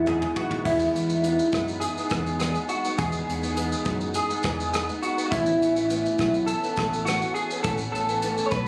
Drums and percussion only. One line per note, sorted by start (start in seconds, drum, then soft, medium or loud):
0.07 clap medium
0.07 mid tom medium
0.22 mid tom medium
0.36 floor tom medium
0.51 floor tom medium
0.65 kick loud
0.65 crash medium
0.79 shaker medium
0.96 closed hi-hat medium
0.96 shaker medium
1.10 shaker medium
1.24 closed hi-hat medium
1.24 shaker medium
1.39 shaker medium
1.52 kick medium
1.52 cross-stick medium
1.52 closed hi-hat soft
1.52 shaker soft
1.68 shaker soft
1.81 closed hi-hat medium
1.81 shaker medium
1.98 shaker soft
2.10 kick medium
2.10 cross-stick medium
2.10 closed hi-hat soft
2.10 shaker soft
2.26 shaker soft
2.40 cross-stick medium
2.40 closed hi-hat medium
2.40 shaker medium
2.55 shaker soft
2.69 closed hi-hat soft
2.69 shaker soft
2.85 shaker medium
2.98 kick loud
2.98 closed hi-hat medium
2.98 shaker medium
3.12 shaker medium
3.30 closed hi-hat medium
3.30 shaker medium
3.43 shaker medium
3.57 closed hi-hat medium
3.57 shaker medium
3.72 shaker medium
3.85 kick medium
3.85 closed hi-hat soft
3.85 shaker soft
4.01 shaker soft
4.14 closed hi-hat medium
4.14 shaker medium
4.30 shaker medium
4.43 kick medium
4.43 cross-stick loud
4.43 closed hi-hat soft
4.43 shaker medium
4.60 shaker soft
4.74 cross-stick medium
4.74 closed hi-hat medium
4.74 shaker medium
4.89 shaker soft
5.03 closed hi-hat soft
5.03 shaker soft
5.18 shaker medium
5.32 kick loud
5.32 closed hi-hat medium
5.32 shaker medium
5.46 shaker medium
5.62 closed hi-hat medium
5.62 shaker medium
5.76 shaker medium
5.90 closed hi-hat medium
5.90 shaker medium
6.06 shaker medium
6.18 kick medium
6.18 cross-stick medium
6.18 closed hi-hat soft
6.18 shaker soft
6.34 shaker soft
6.48 closed hi-hat medium
6.48 shaker medium
6.64 shaker medium
6.76 kick medium
6.76 cross-stick loud
6.76 closed hi-hat soft
6.76 shaker medium
6.93 shaker medium
7.07 cross-stick medium
7.07 closed hi-hat medium
7.07 shaker medium
7.22 shaker soft
7.36 closed hi-hat soft
7.36 shaker soft
7.51 shaker medium
7.64 kick loud
7.64 closed hi-hat medium
7.64 shaker medium
7.78 shaker medium
7.95 closed hi-hat medium
7.95 shaker medium
8.09 shaker medium
8.22 closed hi-hat medium
8.22 shaker medium
8.38 shaker medium
8.51 kick medium
8.51 closed hi-hat soft
8.51 shaker soft